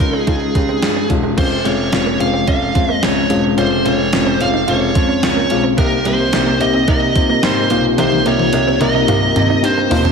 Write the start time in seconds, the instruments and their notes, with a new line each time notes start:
Already playing: lead electric guitar A#4
0.00 grand piano C#2, fm electric piano G#3 C#4 D#4 F4, kick, closed hi-hat
0.13 clean electric guitar C#4
0.18 lead electric guitar G#4
0.27 grand piano C#2, fm electric piano G#3 C#4 D#4 F4, clean electric guitar D#4, lead electric guitar G#4, kick, closed hi-hat
0.41 muted clean electric guitar stroke
0.55 grand piano C#2, fm electric piano G#3 C#4 D#4 G4, kick, closed hi-hat
0.69 clean electric guitar C4
0.82 grand piano G2, fm electric piano G#3 C#4 D#4 F4, snare, closed hi-hat
0.96 clean electric guitar C#4
1.10 grand piano E1, fm electric piano G#3 C#4 D#4 F4, muted clean electric guitar stroke, kick, closed hi-hat
1.23 clean electric guitar G#3
1.37 grand piano F1, fm electric piano G#3 C4 C#4 F4, string machine G#3 C#4 F4, clean electric guitar C#4, lead electric guitar C5, kick, closed hi-hat, crash
1.51 muted clean electric guitar stroke
1.65 grand piano F1, fm electric piano G#3 C4 C#4 F4, clean electric guitar G#3, lead electric guitar C#5, closed hi-hat
1.92 grand piano F1, fm electric piano G#3 C4 C#4 F4, snare, closed hi-hat
2.06 clean electric guitar A#3
2.19 grand piano F1, fm electric piano G#3 C4 C#4 F4, lead electric guitar F5, muted clean electric guitar stroke, closed hi-hat
2.34 clean electric guitar C4
2.47 grand piano F1, fm electric piano G#3 C4 C#4 F4, clean electric guitar C#4, lead electric guitar F5, kick, closed hi-hat
2.61 muted clean electric guitar stroke
2.75 grand piano F2, fm electric piano G#3 C4 C#4 F4, kick, closed hi-hat
2.89 clean electric guitar A#3, lead electric guitar D#5
3.02 grand piano C#2, fm electric piano G#3 C4 C#4 F4, lead electric guitar C#5, snare, closed hi-hat
3.30 grand piano E1, fm electric piano G#3 C4 C#4 F4, clean electric guitar G#3, closed hi-hat
3.57 grand piano F1, fm electric piano G#3 C4 C#4 F4, clean electric guitar C#4, lead electric guitar C5, closed hi-hat
3.71 muted clean electric guitar stroke
3.85 grand piano F1, fm electric piano G#3 C4 C#4 F4, clean electric guitar C4, lead electric guitar C#5, closed hi-hat
4.13 grand piano F1, fm electric piano G#3 C4 C#4 F4, snare, closed hi-hat
4.27 clean electric guitar C#4, lead electric guitar C5
4.40 grand piano F1, fm electric piano G#3 C4 C#4 F4, lead electric guitar F5, muted clean electric guitar stroke, closed hi-hat
4.54 clean electric guitar D#4
4.68 grand piano F1, fm electric piano G#3 C4 C#4 F4, clean electric guitar F4, lead electric guitar C#5, closed hi-hat
4.81 muted clean electric guitar stroke
4.95 grand piano F2, fm electric piano G#3 C4 C#4 F4, kick, closed hi-hat
5.09 clean electric guitar C#4
5.23 grand piano C#2, fm electric piano G#3 C4 C#4 F4, lead electric guitar C#5, snare, closed hi-hat
5.36 clean electric guitar A#3
5.50 grand piano B1, fm electric piano G#3 C4 C#4 F4, muted clean electric guitar stroke, closed hi-hat
5.64 clean electric guitar C4
5.77 grand piano C2, string machine C3 A#3 D#4 G4 A#4, fm electric piano A#3 C4 D#4 G4, clean electric guitar C4, lead electric guitar A#4, kick, closed hi-hat
5.92 muted clean electric guitar stroke
6.05 grand piano C2, clean electric guitar G3, fm electric piano A#3 C4 D#4 G4, lead electric guitar C5, closed hi-hat
6.33 grand piano C2, fm electric piano A#3 C4 D#4 G4, snare, closed hi-hat
6.46 clean electric guitar A#3
6.60 grand piano C2, fm electric piano A#3 C4 D#4 G4, lead electric guitar D#5, muted clean electric guitar stroke, closed hi-hat
6.74 clean electric guitar C4
6.88 grand piano C2, fm electric piano A#3 C4 D#4 A#4, clean electric guitar D#4, lead electric guitar D#5, kick, closed hi-hat
7.02 muted clean electric guitar stroke
7.16 grand piano C3, fm electric piano A#3 C4 D#4 F4, kick, closed hi-hat
7.29 clean electric guitar A#3
7.43 grand piano G#2, fm electric piano A#3 C4 D#4 G4, lead electric guitar C5, snare, closed hi-hat
7.70 grand piano B1, clean electric guitar A#3, fm electric piano A#3 C4 D#4 F4, closed hi-hat
7.98 grand piano C2, fm electric piano A#3 C4 D#4 G4, clean electric guitar C4, lead electric guitar C5, closed hi-hat, high tom
8.12 muted clean electric guitar stroke, high tom
8.25 grand piano C2, fm electric piano A#3 C4 D#4 G4, clean electric guitar A#3, lead electric guitar C#5, closed hi-hat
8.39 high tom
8.53 grand piano C2, fm electric piano A#3 C4 D#4 G4, closed hi-hat
8.67 clean electric guitar C4
8.80 grand piano C2, fm electric piano A#3 C4 D#4 A#4, lead electric guitar D#5, muted clean electric guitar stroke, closed hi-hat, mid tom
8.95 clean electric guitar D#4
9.08 grand piano C2, fm electric piano A#3 C4 D#4 G4, clean electric guitar F4, closed hi-hat, mid tom
9.23 muted clean electric guitar stroke
9.35 grand piano C3, fm electric piano A#3 C4 D#4 G4, closed hi-hat, mid tom
9.50 clean electric guitar D#4
9.62 grand piano G2, fm electric piano A#3 C4 D#4 G4, lead electric guitar C5, closed hi-hat
9.78 clean electric guitar A#3
9.90 grand piano E1, fm electric piano A#3 C4 D#4 F4, muted clean electric guitar stroke, floor tom, open hi-hat
10.05 clean electric guitar C4, floor tom